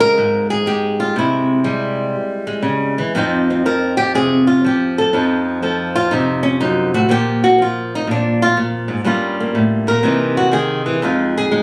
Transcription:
0.00 0.16 C#3 medium
0.00 0.66 G#3 medium
0.00 1.64 C4 soft
0.00 0.67 F4 soft
0.00 0.50 A#4 loud
0.18 1.14 G#2 medium
0.50 0.99 G#4 medium
0.66 1.64 G#3 medium
0.66 1.16 G4 medium
1.00 1.16 F4 medium
1.16 2.14 C3 medium
1.16 3.17 E4 medium
1.64 2.98 G3 medium
1.64 2.46 G#3 soft
2.47 3.16 G#3 soft
2.63 2.97 C#3 medium
2.98 3.15 E3 medium
3.15 5.12 F2 medium
3.15 3.65 F3 soft
3.15 3.50 C4 soft
3.15 5.13 D#4 soft
3.15 3.66 F4 soft
3.50 5.13 C4 soft
3.66 4.64 F3 medium
3.66 3.97 A#4 medium
3.97 4.14 G4 medium
4.15 4.64 C3 medium
4.15 4.47 G#4 medium
4.47 4.64 F4 medium
4.64 5.13 F3 medium
4.64 4.98 G4 medium
4.98 5.47 A4 medium
5.13 6.61 F2 medium
5.13 5.62 F3 soft
5.13 6.10 D#4 soft
5.63 7.09 F3 medium
5.63 5.95 A4 soft
5.96 6.12 F4 medium
6.11 7.09 C3 medium
6.11 6.45 D#4 medium
6.43 6.60 C#4 medium
6.61 6.94 F#2 medium
6.61 6.94 D#4 medium
6.94 7.08 A2 medium
6.94 7.10 F#4 medium
7.09 8.06 A#2 medium
7.09 7.57 F3 soft
7.09 9.04 A#3 soft
7.09 7.44 G4 medium
7.44 7.60 F#4 medium
7.58 9.04 F3 medium
7.58 7.93 F4 medium
7.95 8.10 D#4 medium
8.07 8.56 A#2 medium
8.07 8.42 D4 medium
8.42 8.58 F4 medium
8.57 8.90 A#2 medium
8.88 9.04 G#2 medium
9.04 9.54 G2 medium
9.04 10.02 G3 soft
9.04 9.39 A#3 soft
9.04 10.03 C#4 soft
9.04 9.88 F4 soft
9.40 10.03 A#3 soft
9.55 9.88 A2 medium
9.87 10.03 A#2 medium
9.87 10.37 A#4 medium
10.03 11.01 C3 medium
10.03 10.51 E3 soft
10.03 11.02 A#3 soft
10.03 11.02 D#4 soft
10.37 10.53 F#4 medium
10.51 10.85 D#3 medium
10.51 11.03 G#4 medium
10.86 11.03 E3 medium
11.02 11.63 F2 medium
11.02 11.50 G#3 soft
11.02 11.51 D#4 soft
11.02 11.37 F4 soft
11.38 11.63 G#4 medium
11.51 11.63 G#3 medium
11.51 11.63 D#4 soft

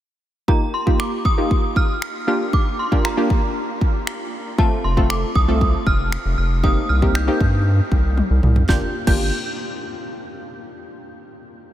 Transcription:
0.48 0.66 A#3 medium
0.48 0.66 D#4 medium
0.48 0.66 F4 medium
0.48 0.66 G4 medium
0.48 0.75 A#5 medium
0.48 kick loud
0.74 0.98 C6 medium
0.86 1.10 A#3 medium
0.86 1.10 D#4 medium
0.86 1.10 F4 medium
0.86 1.11 G4 medium
0.86 kick medium
1.00 1.26 D6 medium
1.00 finger snap loud
1.25 1.78 D#6 loud
1.25 kick medium
1.38 1.85 A#3 medium
1.38 1.85 D#4 medium
1.38 1.85 F4 medium
1.38 1.86 G4 medium
1.51 kick medium
1.76 2.24 F6 loud
1.76 kick medium
2.02 finger snap loud
2.27 2.79 A#3 medium
2.27 2.79 D4 medium
2.27 2.79 F4 medium
2.27 2.79 G4 medium
2.27 2.54 F6 medium
2.53 2.77 D6 loud
2.53 kick loud
2.79 3.03 C6 medium
2.92 3.04 A#3 medium
2.92 3.04 D4 medium
2.92 3.04 F4 medium
2.92 3.04 G4 medium
2.92 kick medium
3.05 3.53 A#5 medium
3.05 finger snap loud
3.17 3.65 A#3 medium
3.17 3.65 D4 medium
3.17 3.65 F4 medium
3.17 3.65 G4 medium
3.30 kick medium
3.81 kick medium
4.07 finger snap loud
4.58 4.76 A3 medium
4.58 4.76 C4 medium
4.58 4.76 F4 medium
4.58 4.76 A4 medium
4.58 4.82 A5 medium
4.58 kick loud
4.84 5.24 F1 medium
4.84 5.11 C6 medium
4.97 5.21 A3 medium
4.97 5.21 C4 medium
4.97 5.21 F4 medium
4.97 5.21 A4 medium
4.97 kick medium
5.10 5.36 D6 medium
5.10 finger snap loud
5.35 5.76 C2 loud
5.35 5.88 D#6 loud
5.35 kick medium
5.48 5.96 A3 medium
5.48 5.96 C4 medium
5.48 5.96 F4 medium
5.48 5.96 A4 medium
5.61 kick medium
5.87 6.17 F1 medium
5.87 6.37 F6 loud
5.87 kick medium
6.12 finger snap loud
6.25 6.35 F1 medium
6.38 6.78 F1 medium
6.38 6.64 F6 medium
6.63 6.81 A#3 medium
6.63 6.81 C4 medium
6.63 6.81 D#4 medium
6.63 6.82 G4 medium
6.63 6.87 D#6 loud
6.63 kick loud
6.89 7.29 C2 medium
6.89 7.16 F6 medium
7.02 7.14 A#3 medium
7.02 7.14 C4 medium
7.02 7.14 D#4 medium
7.02 7.14 G4 medium
7.02 kick medium
7.15 7.63 G6 medium
7.15 finger snap loud
7.27 7.75 A#3 medium
7.27 7.75 C4 medium
7.27 7.75 D#4 medium
7.27 7.75 G4 medium
7.41 7.81 G2 loud
7.41 kick medium
7.92 8.22 C2 loud
7.92 kick medium
8.18 high tom medium
8.30 8.40 C2 medium
8.43 8.63 C2 medium
8.43 mid tom medium
8.56 floor tom medium
8.69 8.83 G1 loud
8.69 8.83 A#3 medium
8.69 8.83 D4 medium
8.69 8.83 F4 medium
8.69 8.83 G4 medium
8.69 8.83 G6 medium
8.69 kick loud
8.69 snare medium
9.07 9.31 G1 loud
9.07 9.31 A#3 medium
9.07 9.31 D4 medium
9.07 9.31 F4 medium
9.07 9.31 G4 medium
9.07 9.31 G6 medium
9.07 kick loud
9.07 crash medium

